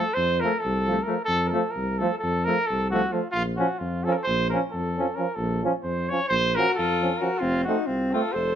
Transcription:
0.00 0.15 A4 loud
0.14 0.43 F2 loud
0.14 0.42 C5 loud
0.40 0.51 F3 medium
0.40 0.52 A3 medium
0.40 0.61 A#4 loud
0.59 1.04 A4 loud
0.65 0.99 C2 loud
0.87 0.95 F3 medium
0.87 0.97 A3 medium
1.03 1.15 A3 medium
1.03 1.24 A#4 medium
1.09 1.16 F3 medium
1.25 1.54 F2 loud
1.25 1.45 A4 loud
1.46 1.72 A4 loud
1.46 1.50 A#4 medium
1.52 1.62 F3 medium
1.52 1.61 A3 medium
1.70 2.00 A#4 medium
1.76 2.02 C2 loud
1.98 2.10 F3 medium
1.98 2.09 A3 medium
1.98 2.18 A4 loud
2.18 2.46 A4 loud
2.23 2.49 F2 loud
2.45 2.55 A3 medium
2.45 2.68 A#4 loud
2.49 2.57 F3 medium
2.66 2.90 A4 loud
2.71 3.05 C2 loud
2.90 3.01 F3 medium
2.90 3.01 A3 medium
2.90 3.14 F#4 loud
3.12 3.20 F3 medium
3.12 3.20 A3 medium
3.12 3.30 F4 medium
3.31 3.59 A#1 loud
3.31 3.43 F4 loud
3.56 3.67 F3 medium
3.56 3.66 C#4 medium
3.56 3.80 F#4 medium
3.79 4.06 F2 loud
3.79 4.06 F4 medium
4.04 4.15 F3 medium
4.04 4.15 C#4 medium
4.04 4.13 A4 loud
4.11 4.23 A4 medium
4.11 4.15 A#4 medium
4.23 4.49 C5 loud
4.28 4.54 A#1 loud
4.50 4.61 F3 medium
4.50 4.61 C#4 medium
4.50 4.60 A#4 medium
4.72 5.09 F2 loud
4.72 5.17 A4 medium
4.98 5.07 F3 medium
4.98 5.06 C#4 medium
5.15 5.26 F3 medium
5.15 5.24 C#4 soft
5.15 5.37 A#4 medium
5.35 5.63 A#1 loud
5.35 5.63 A4 loud
5.64 5.72 F3 medium
5.64 5.72 C#4 medium
5.83 6.10 F2 loud
5.83 6.10 C5 loud
6.09 6.19 F3 medium
6.09 6.19 C#4 medium
6.09 6.28 C#5 loud
6.28 6.57 A#1 loud
6.28 6.57 C5 loud
6.55 6.66 F3 medium
6.55 6.66 C#4 medium
6.55 6.78 F#4 medium
6.55 6.74 A#4 loud
6.75 7.23 F4 medium
6.75 7.19 A4 loud
6.79 7.13 F2 medium
7.02 7.10 F3 medium
7.02 7.10 C#4 medium
7.17 7.28 C#4 medium
7.17 7.40 A#4 medium
7.22 7.29 F3 medium
7.22 7.43 F#4 medium
7.38 7.67 F1 loud
7.38 7.66 C4 loud
7.38 7.63 F4 loud
7.64 7.75 C4 medium
7.64 7.88 D#4 medium
7.64 7.87 F#4 medium
7.68 7.76 A3 medium
7.86 8.14 C2 medium
7.86 8.15 C4 medium
7.86 8.13 F4 medium
8.11 8.22 A3 medium
8.11 8.21 C4 medium
8.11 8.36 F4 medium
8.11 8.34 A4 loud
8.32 8.55 F1 loud
8.32 8.55 A4 medium
8.32 8.55 C5 loud

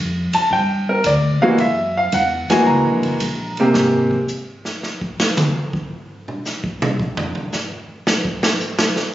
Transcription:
0.00 0.31 F2 medium
0.33 0.51 A5 medium
0.33 muted upright bass stroke soft
0.33 ride medium
0.50 1.03 G2 medium
0.50 0.88 G5 medium
0.50 kick soft
0.89 1.05 A#4 medium
1.04 1.39 D2 medium
1.04 1.42 D5 medium
1.04 kick soft
1.04 hi-hat pedal medium
1.04 ride medium
1.41 1.57 E3 medium
1.41 1.57 G#3 medium
1.41 1.57 A#3 medium
1.41 1.58 F#4 medium
1.41 1.58 F5 medium
1.41 muted upright bass stroke soft
1.58 2.11 F#2 medium
1.58 1.96 E5 medium
1.58 kick soft
1.58 ride medium
1.97 2.13 F5 medium
2.12 2.47 E2 loud
2.12 2.50 F#5 medium
2.12 kick soft
2.12 hi-hat pedal soft
2.12 ride medium
2.49 3.18 E3 medium
2.49 3.18 G#3 medium
2.49 3.18 A#3 medium
2.49 3.18 F#4 medium
2.49 2.67 G#5 medium
2.49 muted upright bass stroke soft
2.49 snare medium
2.49 ride medium
2.66 2.84 C#2 medium
2.66 3.54 A#5 medium
2.66 kick soft
2.84 3.02 A#1 medium
3.02 3.19 F#1 medium
3.02 ride medium
3.20 3.73 A#1 medium
3.20 kick soft
3.20 hi-hat pedal medium
3.20 ride medium
3.57 4.13 C3 medium
3.57 4.13 G#3 medium
3.57 4.13 A#3 medium
3.57 4.14 G4 medium
3.57 ride soft
3.74 4.11 G#1 medium
3.74 snare medium
4.11 kick medium
4.28 hi-hat pedal medium
4.65 snare soft
4.83 snare soft
5.01 kick medium
5.20 snare loud
5.37 hi-hat pedal medium
5.37 high tom loud
5.73 kick medium
6.28 mid tom soft
6.45 snare soft
6.45 hi-hat pedal medium
6.64 kick medium
6.82 mid tom loud
7.00 kick medium
7.17 floor tom loud
7.35 floor tom medium
7.52 snare soft
7.52 hi-hat pedal medium
8.07 snare loud
8.25 kick medium
8.43 snare loud
8.60 hi-hat pedal medium
8.79 snare loud
8.96 snare medium

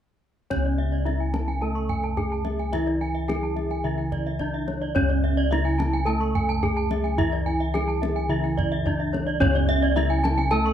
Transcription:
0.50 1.62 C#3 soft
0.50 1.06 C#4 soft
0.50 2.14 C#4 soft
0.50 0.65 C#5 soft
0.50 kendang low soft
0.56 3.83 C#2 medium
0.65 0.79 D5 soft
0.65 kendang slap soft
0.78 0.92 E5 soft
0.78 kendang slap soft
0.92 1.06 D5 soft
1.05 1.15 D4 soft
1.05 1.62 E4 soft
1.05 1.20 E5 soft
1.05 kendang high soft
1.20 1.34 G#5 soft
1.34 1.48 A5 soft
1.34 kendang high soft
1.48 1.62 G#5 soft
1.48 kendang slap soft
1.61 2.73 A3 soft
1.61 2.18 A4 soft
1.61 1.76 A5 soft
1.75 1.90 C#6 soft
1.75 kendang slap soft
1.89 2.04 G#5 soft
1.89 kendang slap soft
1.89 kendang low soft
2.03 2.18 A5 soft
2.03 kendang slap soft
2.17 2.26 D4 soft
2.17 2.73 G#4 soft
2.17 2.31 G#5 soft
2.17 kendang slap soft
2.17 kendang low soft
2.32 2.46 A5 soft
2.45 2.59 E5 soft
2.45 kendang high soft
2.59 2.73 G#5 soft
2.59 kendang slap soft
2.73 3.83 E3 soft
2.73 3.29 E4 soft
2.73 4.36 E4 medium
2.73 2.87 E5 soft
2.73 kendang low soft
2.87 3.01 D5 soft
2.87 kendang slap soft
3.01 3.15 G#5 soft
3.01 kendang slap soft
3.15 3.29 E5 soft
3.28 3.37 D4 soft
3.28 3.84 G#4 soft
3.28 3.42 G#5 soft
3.28 kendang high soft
3.43 3.57 A5 soft
3.56 3.70 E5 soft
3.56 kendang high soft
3.71 3.85 G#5 soft
3.71 kendang slap soft
3.84 5.47 C#3 medium
3.84 4.95 E3 soft
3.84 4.40 E4 soft
3.84 3.98 E5 soft
3.98 4.12 G#5 soft
3.98 kendang slap soft
4.12 4.26 D5 soft
4.12 kendang slap soft
4.12 kendang low soft
4.26 4.40 E5 soft
4.26 kendang slap soft
4.39 4.48 D4 soft
4.39 4.96 D4 soft
4.39 4.54 D5 soft
4.39 kendang slap soft
4.39 kendang low soft
4.54 4.68 E5 soft
4.68 4.82 C#5 soft
4.68 kendang high soft
4.82 4.96 D5 soft
4.82 kendang slap soft
4.95 6.07 C#3 medium
4.95 5.51 C#4 medium
4.95 6.58 C#4 soft
4.95 5.09 C#5 medium
4.95 kendang low soft
5.01 8.28 C#2 medium
5.09 5.23 D5 soft
5.09 kendang slap soft
5.24 5.38 E5 soft
5.24 kendang slap soft
5.37 5.51 D5 soft
5.51 5.59 D4 soft
5.51 6.07 E4 medium
5.51 5.65 E5 medium
5.51 kendang high soft
5.65 5.79 G#5 soft
5.79 5.93 A5 soft
5.79 kendang high soft
5.93 6.07 G#5 soft
5.93 kendang slap soft
6.05 7.18 A3 soft
6.05 6.62 A4 medium
6.05 6.20 A5 medium
6.21 6.34 C#6 soft
6.21 kendang slap soft
6.35 6.49 G#5 soft
6.35 kendang slap soft
6.35 kendang low soft
6.49 6.63 A5 soft
6.49 kendang slap soft
6.63 6.71 D4 soft
6.63 7.18 G#4 medium
6.63 6.76 G#5 medium
6.63 kendang slap soft
6.63 kendang low soft
6.77 6.90 A5 soft
6.91 7.04 E5 soft
6.91 kendang high soft
7.04 7.18 G#5 soft
7.04 kendang slap soft
7.18 8.29 E3 soft
7.18 8.81 E4 medium
7.18 7.74 E4 medium
7.18 7.32 E5 medium
7.18 kendang low soft
7.32 7.46 D5 soft
7.32 kendang slap soft
7.46 7.60 G#5 soft
7.46 kendang slap soft
7.60 7.74 E5 soft
7.74 7.82 D4 soft
7.74 8.29 G#4 medium
7.74 7.88 G#5 medium
7.74 kendang slap soft
7.74 kendang high soft
7.88 8.01 A5 soft
8.02 8.15 E5 soft
8.02 kendang high soft
8.16 8.29 G#5 soft
8.16 kendang slap soft
8.29 9.92 C#3 medium
8.29 9.40 E3 soft
8.29 8.85 E4 medium
8.29 8.43 E5 soft
8.44 8.57 G#5 soft
8.44 kendang slap soft
8.57 8.71 D5 soft
8.57 kendang slap soft
8.57 kendang low soft
8.72 8.85 E5 soft
8.72 kendang slap soft
8.85 8.93 D4 soft
8.85 9.41 D4 soft
8.85 8.99 D5 soft
8.85 kendang slap soft
8.85 kendang low soft
9.00 9.13 E5 soft
9.13 9.27 C#5 soft
9.13 kendang slap soft
9.13 kendang high soft
9.27 9.40 D5 soft
9.27 kendang slap soft
9.40 10.51 C#3 medium
9.40 9.96 C#4 medium
9.40 10.73 C#4 medium
9.40 9.54 C#5 medium
9.40 kendang low medium
9.45 10.73 C#2 medium
9.55 9.68 D5 medium
9.55 kendang slap soft
9.69 9.82 E5 medium
9.69 kendang slap soft
9.83 9.96 D5 medium
9.96 10.04 D4 soft
9.96 10.52 E4 medium
9.96 10.10 E5 medium
9.96 kendang high soft
10.10 10.24 G#5 medium
10.24 10.37 A5 medium
10.24 kendang high soft
10.38 10.51 G#5 medium
10.38 kendang slap soft
10.51 10.73 A3 medium
10.51 10.73 A4 medium
10.51 10.65 A5 medium
10.66 10.73 C#6 medium
10.66 kendang slap soft

